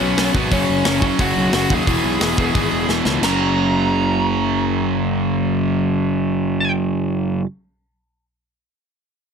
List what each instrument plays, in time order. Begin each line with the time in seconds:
Already playing: overdriven electric guitar B2 F#3 B3, lead electric guitar C#4 C#5
0.01 picked electric bass B1
0.17 picked electric bass B1, overdriven electric guitar B2 F#3 B3, snare, open hi-hat
0.35 picked electric bass G#1, overdriven electric guitar B2 F#3 B3, kick
0.51 picked electric bass F#1, overdriven electric guitar F#2 C#3 F#3, lead electric guitar C#4 C#5, kick, open hi-hat
0.70 picked electric bass F#1
0.85 picked electric bass F#1, overdriven electric guitar F#2 C#3 F#3, snare, open hi-hat
1.01 overdriven electric guitar F#2 C#3 F#3, kick
1.19 picked electric bass F#1, overdriven electric guitar F#2 C#3 F#3, lead electric guitar F#4 F#5, kick, open hi-hat
1.37 picked electric bass B1
1.53 picked electric bass F#1, overdriven electric guitar F#2 C#3 F#3, lead electric guitar F#4 F#5, snare, open hi-hat
1.70 picked electric bass D#2, overdriven electric guitar F#2 C#3 F#3, lead electric guitar G#4 G#5, kick
1.87 picked electric bass E1, overdriven electric guitar E2 B2 E3, kick, open hi-hat
2.04 picked electric bass B1
2.21 picked electric bass E1, overdriven electric guitar E2 B2 E3, snare, open hi-hat
2.38 picked electric bass E1, overdriven electric guitar E2 B2 E3, kick
2.55 picked electric bass G#1, overdriven electric guitar E2 B2 E3, kick, open hi-hat
2.73 picked electric bass E1
2.89 picked electric bass E1, overdriven electric guitar E2 B2 E3, snare
3.05 picked electric bass C#2, overdriven electric guitar E2 B2 E3, snare
3.21 picked electric bass F#1, overdriven electric guitar F#2 C#3, lead electric guitar A#5, snare, crash
3.25 overdriven electric guitar F#3